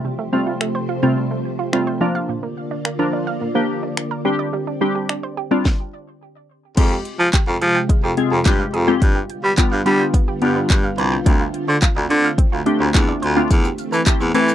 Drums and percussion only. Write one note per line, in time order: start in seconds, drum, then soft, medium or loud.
0.61 finger snap loud
1.73 finger snap loud
2.85 finger snap loud
3.97 finger snap loud
5.09 finger snap loud
5.65 kick loud
5.65 snare medium
6.77 kick loud
6.77 closed hi-hat medium
6.77 crash loud
7.05 closed hi-hat medium
7.33 kick loud
7.33 clap loud
7.33 closed hi-hat medium
7.62 closed hi-hat medium
7.89 kick loud
7.89 closed hi-hat medium
8.17 closed hi-hat medium
8.46 kick loud
8.46 clap loud
8.46 closed hi-hat medium
8.74 closed hi-hat medium
9.02 kick loud
9.02 closed hi-hat medium
9.30 closed hi-hat medium
9.58 kick loud
9.58 clap loud
9.58 closed hi-hat medium
9.86 closed hi-hat medium
10.14 kick loud
10.14 closed hi-hat medium
10.42 closed hi-hat medium
10.70 kick loud
10.70 clap loud
10.70 closed hi-hat medium
10.98 closed hi-hat medium
11.26 kick loud
11.26 closed hi-hat medium
11.54 closed hi-hat medium
11.82 kick loud
11.82 clap loud
11.82 closed hi-hat medium
12.10 closed hi-hat medium
12.38 kick loud
12.38 closed hi-hat medium
12.66 closed hi-hat medium
12.95 kick loud
12.95 clap loud
12.95 closed hi-hat medium
13.23 closed hi-hat medium
13.51 kick loud
13.51 closed hi-hat medium
13.51 shaker medium
13.65 shaker medium
13.78 closed hi-hat medium
13.78 shaker medium
13.93 shaker medium
14.06 kick loud
14.06 clap loud
14.06 closed hi-hat medium
14.06 shaker medium
14.21 shaker soft
14.35 closed hi-hat medium
14.35 shaker medium
14.48 shaker medium